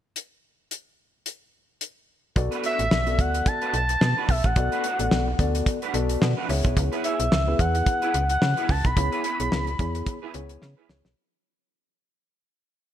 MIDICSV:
0, 0, Header, 1, 7, 480
1, 0, Start_track
1, 0, Tempo, 550459
1, 140, Time_signature, 4, 2, 24, 8
1, 11279, End_track
2, 0, Start_track
2, 0, Title_t, "Analog synth lead"
2, 0, Program_c, 0, 81
2, 2318, Note_on_c, 0, 76, 99
2, 2793, Note_on_c, 0, 78, 102
2, 2806, Note_off_c, 0, 76, 0
2, 3027, Note_on_c, 0, 81, 111
2, 3040, Note_off_c, 0, 78, 0
2, 3263, Note_off_c, 0, 81, 0
2, 3267, Note_on_c, 0, 81, 118
2, 3748, Note_on_c, 0, 76, 96
2, 3761, Note_off_c, 0, 81, 0
2, 3884, Note_on_c, 0, 78, 89
2, 3897, Note_off_c, 0, 76, 0
2, 4839, Note_off_c, 0, 78, 0
2, 6145, Note_on_c, 0, 76, 96
2, 6627, Note_on_c, 0, 78, 104
2, 6640, Note_off_c, 0, 76, 0
2, 7235, Note_off_c, 0, 78, 0
2, 7241, Note_on_c, 0, 78, 101
2, 7590, Note_on_c, 0, 81, 104
2, 7603, Note_off_c, 0, 78, 0
2, 7723, Note_on_c, 0, 83, 109
2, 7736, Note_off_c, 0, 81, 0
2, 9264, Note_off_c, 0, 83, 0
2, 11279, End_track
3, 0, Start_track
3, 0, Title_t, "Tine electric piano"
3, 0, Program_c, 1, 4
3, 2055, Note_on_c, 1, 59, 97
3, 2059, Note_on_c, 1, 66, 96
3, 2060, Note_on_c, 1, 69, 89
3, 2063, Note_on_c, 1, 74, 105
3, 2475, Note_off_c, 1, 59, 0
3, 2477, Note_off_c, 1, 66, 0
3, 2478, Note_off_c, 1, 69, 0
3, 2479, Note_off_c, 1, 74, 0
3, 2674, Note_on_c, 1, 59, 77
3, 2675, Note_on_c, 1, 66, 74
3, 2678, Note_on_c, 1, 69, 65
3, 2681, Note_on_c, 1, 74, 78
3, 3321, Note_off_c, 1, 59, 0
3, 3322, Note_off_c, 1, 66, 0
3, 3324, Note_off_c, 1, 69, 0
3, 3325, Note_off_c, 1, 74, 0
3, 3979, Note_on_c, 1, 59, 82
3, 3981, Note_on_c, 1, 66, 81
3, 3984, Note_on_c, 1, 69, 84
3, 3985, Note_on_c, 1, 74, 100
3, 4226, Note_off_c, 1, 59, 0
3, 4226, Note_off_c, 1, 66, 0
3, 4228, Note_off_c, 1, 69, 0
3, 4229, Note_off_c, 1, 74, 0
3, 4352, Note_on_c, 1, 59, 76
3, 4354, Note_on_c, 1, 66, 72
3, 4358, Note_on_c, 1, 69, 72
3, 4360, Note_on_c, 1, 74, 84
3, 4598, Note_off_c, 1, 59, 0
3, 4599, Note_off_c, 1, 66, 0
3, 4601, Note_off_c, 1, 69, 0
3, 4602, Note_off_c, 1, 74, 0
3, 4700, Note_on_c, 1, 59, 88
3, 4703, Note_on_c, 1, 66, 79
3, 4704, Note_on_c, 1, 69, 79
3, 4708, Note_on_c, 1, 74, 101
3, 5038, Note_off_c, 1, 59, 0
3, 5039, Note_off_c, 1, 66, 0
3, 5040, Note_off_c, 1, 69, 0
3, 5042, Note_off_c, 1, 74, 0
3, 5176, Note_on_c, 1, 59, 103
3, 5179, Note_on_c, 1, 66, 94
3, 5181, Note_on_c, 1, 69, 92
3, 5181, Note_on_c, 1, 81, 74
3, 5184, Note_on_c, 1, 74, 110
3, 5403, Note_off_c, 1, 81, 0
3, 5420, Note_on_c, 1, 78, 77
3, 5516, Note_off_c, 1, 59, 0
3, 5517, Note_off_c, 1, 66, 0
3, 5518, Note_off_c, 1, 69, 0
3, 5520, Note_off_c, 1, 74, 0
3, 5643, Note_off_c, 1, 78, 0
3, 5659, Note_on_c, 1, 59, 99
3, 5662, Note_on_c, 1, 64, 90
3, 5663, Note_on_c, 1, 76, 71
3, 5665, Note_on_c, 1, 68, 85
3, 5666, Note_on_c, 1, 73, 103
3, 5884, Note_off_c, 1, 76, 0
3, 6337, Note_off_c, 1, 59, 0
3, 6338, Note_off_c, 1, 64, 0
3, 6340, Note_off_c, 1, 68, 0
3, 6340, Note_off_c, 1, 73, 0
3, 6516, Note_on_c, 1, 59, 74
3, 6519, Note_on_c, 1, 68, 71
3, 6520, Note_on_c, 1, 64, 67
3, 6522, Note_on_c, 1, 71, 84
3, 7163, Note_off_c, 1, 59, 0
3, 7164, Note_off_c, 1, 64, 0
3, 7164, Note_off_c, 1, 68, 0
3, 7166, Note_off_c, 1, 71, 0
3, 7820, Note_on_c, 1, 59, 88
3, 7822, Note_on_c, 1, 64, 78
3, 7825, Note_on_c, 1, 68, 73
3, 7827, Note_on_c, 1, 73, 101
3, 8066, Note_off_c, 1, 59, 0
3, 8067, Note_off_c, 1, 64, 0
3, 8069, Note_off_c, 1, 68, 0
3, 8070, Note_off_c, 1, 73, 0
3, 8192, Note_on_c, 1, 59, 76
3, 8193, Note_on_c, 1, 64, 74
3, 8195, Note_on_c, 1, 68, 72
3, 8199, Note_on_c, 1, 73, 86
3, 8438, Note_off_c, 1, 59, 0
3, 8438, Note_off_c, 1, 64, 0
3, 8439, Note_off_c, 1, 68, 0
3, 8441, Note_off_c, 1, 73, 0
3, 8538, Note_on_c, 1, 59, 91
3, 8541, Note_on_c, 1, 64, 79
3, 8543, Note_on_c, 1, 68, 82
3, 8545, Note_on_c, 1, 73, 96
3, 8877, Note_off_c, 1, 59, 0
3, 8879, Note_off_c, 1, 64, 0
3, 8880, Note_off_c, 1, 68, 0
3, 8880, Note_off_c, 1, 73, 0
3, 9017, Note_on_c, 1, 59, 105
3, 9017, Note_on_c, 1, 64, 99
3, 9021, Note_on_c, 1, 68, 98
3, 9022, Note_on_c, 1, 73, 112
3, 9356, Note_off_c, 1, 59, 0
3, 9357, Note_off_c, 1, 64, 0
3, 9358, Note_off_c, 1, 68, 0
3, 9359, Note_off_c, 1, 73, 0
3, 9497, Note_on_c, 1, 59, 82
3, 9498, Note_on_c, 1, 64, 75
3, 9502, Note_on_c, 1, 68, 79
3, 9503, Note_on_c, 1, 73, 96
3, 9671, Note_off_c, 1, 59, 0
3, 9672, Note_off_c, 1, 64, 0
3, 9674, Note_off_c, 1, 68, 0
3, 9674, Note_off_c, 1, 73, 0
3, 11279, End_track
4, 0, Start_track
4, 0, Title_t, "Clean electric guitar"
4, 0, Program_c, 2, 27
4, 2191, Note_on_c, 2, 71, 90
4, 2195, Note_on_c, 2, 66, 77
4, 2198, Note_on_c, 2, 62, 70
4, 2201, Note_on_c, 2, 57, 72
4, 2287, Note_off_c, 2, 57, 0
4, 2292, Note_off_c, 2, 62, 0
4, 2294, Note_off_c, 2, 66, 0
4, 2297, Note_on_c, 2, 57, 61
4, 2303, Note_on_c, 2, 62, 59
4, 2305, Note_off_c, 2, 71, 0
4, 2305, Note_on_c, 2, 66, 71
4, 2308, Note_on_c, 2, 73, 72
4, 2412, Note_off_c, 2, 57, 0
4, 2415, Note_off_c, 2, 62, 0
4, 2416, Note_off_c, 2, 66, 0
4, 2418, Note_off_c, 2, 73, 0
4, 3154, Note_on_c, 2, 71, 78
4, 3158, Note_on_c, 2, 66, 73
4, 3161, Note_on_c, 2, 62, 67
4, 3165, Note_on_c, 2, 57, 61
4, 3251, Note_off_c, 2, 57, 0
4, 3254, Note_off_c, 2, 62, 0
4, 3257, Note_off_c, 2, 66, 0
4, 3258, Note_off_c, 2, 71, 0
4, 3637, Note_on_c, 2, 71, 70
4, 3641, Note_on_c, 2, 66, 72
4, 3645, Note_on_c, 2, 62, 69
4, 3649, Note_on_c, 2, 57, 64
4, 3733, Note_off_c, 2, 57, 0
4, 3736, Note_off_c, 2, 62, 0
4, 3739, Note_off_c, 2, 66, 0
4, 3742, Note_off_c, 2, 71, 0
4, 4116, Note_on_c, 2, 71, 79
4, 4121, Note_on_c, 2, 66, 85
4, 4123, Note_on_c, 2, 62, 73
4, 4127, Note_on_c, 2, 57, 65
4, 4207, Note_off_c, 2, 57, 0
4, 4212, Note_off_c, 2, 62, 0
4, 4216, Note_off_c, 2, 66, 0
4, 4218, Note_on_c, 2, 57, 60
4, 4223, Note_on_c, 2, 62, 63
4, 4226, Note_off_c, 2, 71, 0
4, 4227, Note_on_c, 2, 66, 70
4, 4230, Note_on_c, 2, 73, 74
4, 4333, Note_off_c, 2, 57, 0
4, 4335, Note_off_c, 2, 62, 0
4, 4337, Note_off_c, 2, 66, 0
4, 4339, Note_off_c, 2, 73, 0
4, 5077, Note_on_c, 2, 71, 77
4, 5080, Note_on_c, 2, 66, 73
4, 5083, Note_on_c, 2, 62, 67
4, 5087, Note_on_c, 2, 57, 64
4, 5168, Note_off_c, 2, 57, 0
4, 5172, Note_off_c, 2, 62, 0
4, 5174, Note_off_c, 2, 66, 0
4, 5177, Note_off_c, 2, 71, 0
4, 5555, Note_on_c, 2, 71, 69
4, 5559, Note_on_c, 2, 66, 77
4, 5562, Note_on_c, 2, 62, 69
4, 5565, Note_on_c, 2, 57, 67
4, 5658, Note_off_c, 2, 71, 0
4, 5659, Note_off_c, 2, 57, 0
4, 5661, Note_off_c, 2, 62, 0
4, 5664, Note_off_c, 2, 66, 0
4, 6032, Note_on_c, 2, 71, 93
4, 6037, Note_on_c, 2, 68, 83
4, 6040, Note_on_c, 2, 64, 76
4, 6044, Note_on_c, 2, 59, 70
4, 6126, Note_off_c, 2, 59, 0
4, 6132, Note_off_c, 2, 64, 0
4, 6134, Note_off_c, 2, 68, 0
4, 6136, Note_on_c, 2, 59, 73
4, 6142, Note_on_c, 2, 64, 68
4, 6144, Note_off_c, 2, 71, 0
4, 6145, Note_on_c, 2, 68, 66
4, 6148, Note_on_c, 2, 73, 74
4, 6252, Note_off_c, 2, 59, 0
4, 6255, Note_off_c, 2, 64, 0
4, 6256, Note_off_c, 2, 68, 0
4, 6258, Note_off_c, 2, 73, 0
4, 6993, Note_on_c, 2, 71, 77
4, 6997, Note_on_c, 2, 68, 86
4, 7001, Note_on_c, 2, 64, 78
4, 7005, Note_on_c, 2, 59, 68
4, 7088, Note_off_c, 2, 59, 0
4, 7091, Note_off_c, 2, 64, 0
4, 7093, Note_off_c, 2, 68, 0
4, 7096, Note_off_c, 2, 71, 0
4, 7473, Note_on_c, 2, 71, 79
4, 7477, Note_on_c, 2, 68, 72
4, 7481, Note_on_c, 2, 64, 72
4, 7486, Note_on_c, 2, 59, 63
4, 7570, Note_off_c, 2, 59, 0
4, 7574, Note_off_c, 2, 64, 0
4, 7575, Note_off_c, 2, 68, 0
4, 7578, Note_off_c, 2, 71, 0
4, 7953, Note_on_c, 2, 71, 87
4, 7957, Note_on_c, 2, 68, 77
4, 7961, Note_on_c, 2, 64, 71
4, 7964, Note_on_c, 2, 59, 73
4, 8048, Note_off_c, 2, 59, 0
4, 8053, Note_off_c, 2, 64, 0
4, 8055, Note_off_c, 2, 68, 0
4, 8059, Note_on_c, 2, 59, 64
4, 8063, Note_on_c, 2, 64, 60
4, 8066, Note_on_c, 2, 68, 66
4, 8067, Note_off_c, 2, 71, 0
4, 8070, Note_on_c, 2, 73, 64
4, 8173, Note_off_c, 2, 59, 0
4, 8175, Note_off_c, 2, 64, 0
4, 8177, Note_off_c, 2, 68, 0
4, 8179, Note_off_c, 2, 73, 0
4, 8913, Note_on_c, 2, 71, 78
4, 8917, Note_on_c, 2, 68, 82
4, 8921, Note_on_c, 2, 64, 68
4, 8923, Note_on_c, 2, 59, 73
4, 9008, Note_off_c, 2, 59, 0
4, 9012, Note_off_c, 2, 64, 0
4, 9015, Note_off_c, 2, 68, 0
4, 9017, Note_off_c, 2, 71, 0
4, 9390, Note_on_c, 2, 71, 78
4, 9395, Note_on_c, 2, 68, 75
4, 9398, Note_on_c, 2, 64, 77
4, 9401, Note_on_c, 2, 59, 62
4, 9484, Note_off_c, 2, 59, 0
4, 9487, Note_off_c, 2, 64, 0
4, 9490, Note_off_c, 2, 68, 0
4, 9493, Note_off_c, 2, 71, 0
4, 11279, End_track
5, 0, Start_track
5, 0, Title_t, "FM bass"
5, 0, Program_c, 3, 39
5, 2060, Note_on_c, 3, 35, 114
5, 2174, Note_off_c, 3, 35, 0
5, 2435, Note_on_c, 3, 33, 87
5, 2524, Note_off_c, 3, 33, 0
5, 2540, Note_on_c, 3, 35, 90
5, 2779, Note_on_c, 3, 38, 98
5, 2792, Note_off_c, 3, 35, 0
5, 2983, Note_off_c, 3, 38, 0
5, 3257, Note_on_c, 3, 35, 92
5, 3462, Note_off_c, 3, 35, 0
5, 3498, Note_on_c, 3, 47, 101
5, 3613, Note_off_c, 3, 47, 0
5, 3739, Note_on_c, 3, 35, 88
5, 3853, Note_off_c, 3, 35, 0
5, 3874, Note_on_c, 3, 33, 93
5, 3963, Note_off_c, 3, 33, 0
5, 3979, Note_on_c, 3, 35, 111
5, 4093, Note_off_c, 3, 35, 0
5, 4355, Note_on_c, 3, 33, 91
5, 4444, Note_off_c, 3, 33, 0
5, 4460, Note_on_c, 3, 35, 85
5, 4663, Note_off_c, 3, 35, 0
5, 4701, Note_on_c, 3, 38, 92
5, 4904, Note_off_c, 3, 38, 0
5, 5179, Note_on_c, 3, 35, 100
5, 5383, Note_off_c, 3, 35, 0
5, 5420, Note_on_c, 3, 47, 104
5, 5534, Note_off_c, 3, 47, 0
5, 5661, Note_on_c, 3, 37, 105
5, 5774, Note_off_c, 3, 37, 0
5, 5796, Note_on_c, 3, 35, 90
5, 5885, Note_off_c, 3, 35, 0
5, 5901, Note_on_c, 3, 37, 113
5, 6014, Note_off_c, 3, 37, 0
5, 6276, Note_on_c, 3, 35, 89
5, 6364, Note_off_c, 3, 35, 0
5, 6380, Note_on_c, 3, 37, 107
5, 6584, Note_off_c, 3, 37, 0
5, 6620, Note_on_c, 3, 40, 102
5, 6824, Note_off_c, 3, 40, 0
5, 7101, Note_on_c, 3, 37, 92
5, 7304, Note_off_c, 3, 37, 0
5, 7341, Note_on_c, 3, 49, 100
5, 7455, Note_off_c, 3, 49, 0
5, 7580, Note_on_c, 3, 37, 94
5, 7694, Note_off_c, 3, 37, 0
5, 7715, Note_on_c, 3, 35, 85
5, 7804, Note_off_c, 3, 35, 0
5, 7819, Note_on_c, 3, 37, 105
5, 7933, Note_off_c, 3, 37, 0
5, 8196, Note_on_c, 3, 35, 89
5, 8285, Note_off_c, 3, 35, 0
5, 8303, Note_on_c, 3, 37, 106
5, 8505, Note_off_c, 3, 37, 0
5, 8539, Note_on_c, 3, 40, 98
5, 8743, Note_off_c, 3, 40, 0
5, 9023, Note_on_c, 3, 37, 88
5, 9225, Note_off_c, 3, 37, 0
5, 9263, Note_on_c, 3, 49, 89
5, 9375, Note_off_c, 3, 49, 0
5, 9499, Note_on_c, 3, 37, 86
5, 9613, Note_off_c, 3, 37, 0
5, 9633, Note_on_c, 3, 35, 91
5, 9723, Note_off_c, 3, 35, 0
5, 11279, End_track
6, 0, Start_track
6, 0, Title_t, "Muted clean electric guitar strokes"
6, 2057, Note_on_c, 9, 29, 41
6, 2145, Note_off_c, 9, 29, 0
6, 2434, Note_on_c, 9, 29, 56
6, 2522, Note_off_c, 9, 29, 0
6, 2539, Note_on_c, 9, 29, 36
6, 2626, Note_off_c, 9, 29, 0
6, 2673, Note_on_c, 9, 29, 45
6, 2761, Note_off_c, 9, 29, 0
6, 2913, Note_on_c, 9, 29, 49
6, 3000, Note_off_c, 9, 29, 0
6, 3020, Note_on_c, 9, 29, 42
6, 3107, Note_off_c, 9, 29, 0
6, 3261, Note_on_c, 9, 29, 39
6, 3349, Note_off_c, 9, 29, 0
6, 3394, Note_on_c, 9, 29, 52
6, 3482, Note_off_c, 9, 29, 0
6, 3501, Note_on_c, 9, 29, 39
6, 3588, Note_off_c, 9, 29, 0
6, 3744, Note_on_c, 9, 29, 36
6, 3831, Note_off_c, 9, 29, 0
6, 3876, Note_on_c, 9, 29, 51
6, 3964, Note_off_c, 9, 29, 0
6, 3980, Note_on_c, 9, 29, 40
6, 4068, Note_off_c, 9, 29, 0
6, 4355, Note_on_c, 9, 29, 41
6, 4442, Note_off_c, 9, 29, 0
6, 4460, Note_on_c, 9, 29, 43
6, 4547, Note_off_c, 9, 29, 0
6, 4596, Note_on_c, 9, 29, 47
6, 4683, Note_off_c, 9, 29, 0
6, 4838, Note_on_c, 9, 29, 53
6, 4925, Note_off_c, 9, 29, 0
6, 4942, Note_on_c, 9, 29, 46
6, 5030, Note_off_c, 9, 29, 0
6, 5179, Note_on_c, 9, 29, 37
6, 5266, Note_off_c, 9, 29, 0
6, 5314, Note_on_c, 9, 29, 46
6, 5402, Note_off_c, 9, 29, 0
6, 5420, Note_on_c, 9, 29, 41
6, 5507, Note_off_c, 9, 29, 0
6, 5662, Note_on_c, 9, 29, 47
6, 5749, Note_off_c, 9, 29, 0
6, 5795, Note_on_c, 9, 29, 45
6, 5883, Note_off_c, 9, 29, 0
6, 5899, Note_on_c, 9, 29, 40
6, 5986, Note_off_c, 9, 29, 0
6, 6271, Note_on_c, 9, 29, 53
6, 6359, Note_off_c, 9, 29, 0
6, 6378, Note_on_c, 9, 29, 35
6, 6465, Note_off_c, 9, 29, 0
6, 6514, Note_on_c, 9, 29, 47
6, 6602, Note_off_c, 9, 29, 0
6, 6753, Note_on_c, 9, 29, 53
6, 6840, Note_off_c, 9, 29, 0
6, 6860, Note_on_c, 9, 29, 40
6, 6947, Note_off_c, 9, 29, 0
6, 7099, Note_on_c, 9, 29, 51
6, 7186, Note_off_c, 9, 29, 0
6, 7234, Note_on_c, 9, 29, 40
6, 7321, Note_off_c, 9, 29, 0
6, 7339, Note_on_c, 9, 29, 32
6, 7426, Note_off_c, 9, 29, 0
6, 7581, Note_on_c, 9, 29, 45
6, 7668, Note_off_c, 9, 29, 0
6, 7714, Note_on_c, 9, 29, 46
6, 7802, Note_off_c, 9, 29, 0
6, 7819, Note_on_c, 9, 29, 47
6, 7906, Note_off_c, 9, 29, 0
6, 8196, Note_on_c, 9, 29, 45
6, 8283, Note_off_c, 9, 29, 0
6, 8303, Note_on_c, 9, 29, 46
6, 8390, Note_off_c, 9, 29, 0
6, 8434, Note_on_c, 9, 29, 52
6, 8522, Note_off_c, 9, 29, 0
6, 8677, Note_on_c, 9, 29, 45
6, 8764, Note_off_c, 9, 29, 0
6, 8781, Note_on_c, 9, 29, 34
6, 8869, Note_off_c, 9, 29, 0
6, 9018, Note_on_c, 9, 29, 39
6, 9106, Note_off_c, 9, 29, 0
6, 9152, Note_on_c, 9, 29, 49
6, 9239, Note_off_c, 9, 29, 0
6, 9254, Note_on_c, 9, 29, 39
6, 9341, Note_off_c, 9, 29, 0
6, 9494, Note_on_c, 9, 29, 42
6, 9582, Note_off_c, 9, 29, 0
6, 9630, Note_on_c, 9, 29, 36
6, 9717, Note_off_c, 9, 29, 0
6, 11279, End_track
7, 0, Start_track
7, 0, Title_t, "Drums"
7, 139, Note_on_c, 9, 42, 58
7, 226, Note_off_c, 9, 42, 0
7, 620, Note_on_c, 9, 42, 60
7, 707, Note_off_c, 9, 42, 0
7, 1098, Note_on_c, 9, 42, 61
7, 1185, Note_off_c, 9, 42, 0
7, 1579, Note_on_c, 9, 42, 60
7, 1666, Note_off_c, 9, 42, 0
7, 2058, Note_on_c, 9, 42, 83
7, 2059, Note_on_c, 9, 36, 110
7, 2145, Note_off_c, 9, 42, 0
7, 2146, Note_off_c, 9, 36, 0
7, 2196, Note_on_c, 9, 42, 38
7, 2283, Note_off_c, 9, 42, 0
7, 2298, Note_on_c, 9, 42, 71
7, 2385, Note_off_c, 9, 42, 0
7, 2434, Note_on_c, 9, 42, 62
7, 2522, Note_off_c, 9, 42, 0
7, 2541, Note_on_c, 9, 38, 108
7, 2628, Note_off_c, 9, 38, 0
7, 2674, Note_on_c, 9, 42, 34
7, 2761, Note_off_c, 9, 42, 0
7, 2779, Note_on_c, 9, 36, 95
7, 2781, Note_on_c, 9, 42, 73
7, 2867, Note_off_c, 9, 36, 0
7, 2868, Note_off_c, 9, 42, 0
7, 2916, Note_on_c, 9, 42, 56
7, 3003, Note_off_c, 9, 42, 0
7, 3017, Note_on_c, 9, 36, 107
7, 3018, Note_on_c, 9, 42, 84
7, 3105, Note_off_c, 9, 36, 0
7, 3105, Note_off_c, 9, 42, 0
7, 3152, Note_on_c, 9, 42, 37
7, 3239, Note_off_c, 9, 42, 0
7, 3258, Note_on_c, 9, 42, 77
7, 3345, Note_off_c, 9, 42, 0
7, 3392, Note_on_c, 9, 42, 64
7, 3479, Note_off_c, 9, 42, 0
7, 3500, Note_on_c, 9, 38, 109
7, 3587, Note_off_c, 9, 38, 0
7, 3739, Note_on_c, 9, 36, 94
7, 3740, Note_on_c, 9, 46, 67
7, 3826, Note_off_c, 9, 36, 0
7, 3827, Note_off_c, 9, 46, 0
7, 3872, Note_on_c, 9, 42, 49
7, 3874, Note_on_c, 9, 36, 96
7, 3960, Note_off_c, 9, 42, 0
7, 3961, Note_off_c, 9, 36, 0
7, 3976, Note_on_c, 9, 42, 91
7, 3978, Note_on_c, 9, 36, 115
7, 4063, Note_off_c, 9, 42, 0
7, 4066, Note_off_c, 9, 36, 0
7, 4116, Note_on_c, 9, 42, 38
7, 4203, Note_off_c, 9, 42, 0
7, 4219, Note_on_c, 9, 42, 67
7, 4306, Note_off_c, 9, 42, 0
7, 4354, Note_on_c, 9, 42, 61
7, 4442, Note_off_c, 9, 42, 0
7, 4459, Note_on_c, 9, 38, 106
7, 4547, Note_off_c, 9, 38, 0
7, 4700, Note_on_c, 9, 36, 90
7, 4700, Note_on_c, 9, 42, 76
7, 4787, Note_off_c, 9, 36, 0
7, 4787, Note_off_c, 9, 42, 0
7, 4838, Note_on_c, 9, 42, 57
7, 4925, Note_off_c, 9, 42, 0
7, 4939, Note_on_c, 9, 36, 110
7, 4940, Note_on_c, 9, 42, 89
7, 5026, Note_off_c, 9, 36, 0
7, 5027, Note_off_c, 9, 42, 0
7, 5075, Note_on_c, 9, 42, 37
7, 5163, Note_off_c, 9, 42, 0
7, 5181, Note_on_c, 9, 42, 77
7, 5268, Note_off_c, 9, 42, 0
7, 5314, Note_on_c, 9, 42, 64
7, 5401, Note_off_c, 9, 42, 0
7, 5421, Note_on_c, 9, 38, 115
7, 5508, Note_off_c, 9, 38, 0
7, 5663, Note_on_c, 9, 46, 69
7, 5750, Note_off_c, 9, 46, 0
7, 5796, Note_on_c, 9, 36, 92
7, 5796, Note_on_c, 9, 42, 52
7, 5883, Note_off_c, 9, 36, 0
7, 5883, Note_off_c, 9, 42, 0
7, 5901, Note_on_c, 9, 36, 99
7, 5901, Note_on_c, 9, 42, 89
7, 5988, Note_off_c, 9, 36, 0
7, 5988, Note_off_c, 9, 42, 0
7, 6038, Note_on_c, 9, 42, 37
7, 6125, Note_off_c, 9, 42, 0
7, 6140, Note_on_c, 9, 42, 74
7, 6227, Note_off_c, 9, 42, 0
7, 6275, Note_on_c, 9, 42, 64
7, 6362, Note_off_c, 9, 42, 0
7, 6382, Note_on_c, 9, 38, 105
7, 6470, Note_off_c, 9, 38, 0
7, 6621, Note_on_c, 9, 36, 84
7, 6622, Note_on_c, 9, 42, 77
7, 6708, Note_off_c, 9, 36, 0
7, 6709, Note_off_c, 9, 42, 0
7, 6756, Note_on_c, 9, 42, 53
7, 6843, Note_off_c, 9, 42, 0
7, 6858, Note_on_c, 9, 36, 111
7, 6858, Note_on_c, 9, 42, 85
7, 6945, Note_off_c, 9, 36, 0
7, 6945, Note_off_c, 9, 42, 0
7, 6993, Note_on_c, 9, 42, 37
7, 7080, Note_off_c, 9, 42, 0
7, 7100, Note_on_c, 9, 42, 81
7, 7188, Note_off_c, 9, 42, 0
7, 7233, Note_on_c, 9, 42, 64
7, 7320, Note_off_c, 9, 42, 0
7, 7340, Note_on_c, 9, 38, 113
7, 7427, Note_off_c, 9, 38, 0
7, 7474, Note_on_c, 9, 42, 35
7, 7562, Note_off_c, 9, 42, 0
7, 7580, Note_on_c, 9, 36, 87
7, 7581, Note_on_c, 9, 46, 70
7, 7667, Note_off_c, 9, 36, 0
7, 7668, Note_off_c, 9, 46, 0
7, 7714, Note_on_c, 9, 42, 51
7, 7715, Note_on_c, 9, 36, 87
7, 7801, Note_off_c, 9, 42, 0
7, 7802, Note_off_c, 9, 36, 0
7, 7819, Note_on_c, 9, 36, 110
7, 7819, Note_on_c, 9, 42, 82
7, 7906, Note_off_c, 9, 36, 0
7, 7906, Note_off_c, 9, 42, 0
7, 7956, Note_on_c, 9, 42, 35
7, 8043, Note_off_c, 9, 42, 0
7, 8058, Note_on_c, 9, 42, 73
7, 8145, Note_off_c, 9, 42, 0
7, 8196, Note_on_c, 9, 42, 64
7, 8283, Note_off_c, 9, 42, 0
7, 8301, Note_on_c, 9, 38, 109
7, 8388, Note_off_c, 9, 38, 0
7, 8434, Note_on_c, 9, 42, 36
7, 8521, Note_off_c, 9, 42, 0
7, 8539, Note_on_c, 9, 36, 96
7, 8540, Note_on_c, 9, 42, 74
7, 8626, Note_off_c, 9, 36, 0
7, 8627, Note_off_c, 9, 42, 0
7, 8675, Note_on_c, 9, 42, 55
7, 8762, Note_off_c, 9, 42, 0
7, 8777, Note_on_c, 9, 36, 105
7, 8777, Note_on_c, 9, 42, 88
7, 8864, Note_off_c, 9, 36, 0
7, 8864, Note_off_c, 9, 42, 0
7, 9017, Note_on_c, 9, 42, 78
7, 9105, Note_off_c, 9, 42, 0
7, 9151, Note_on_c, 9, 42, 63
7, 9238, Note_off_c, 9, 42, 0
7, 9259, Note_on_c, 9, 38, 53
7, 9346, Note_off_c, 9, 38, 0
7, 9500, Note_on_c, 9, 38, 87
7, 9587, Note_off_c, 9, 38, 0
7, 9635, Note_on_c, 9, 38, 88
7, 9722, Note_off_c, 9, 38, 0
7, 11279, End_track
0, 0, End_of_file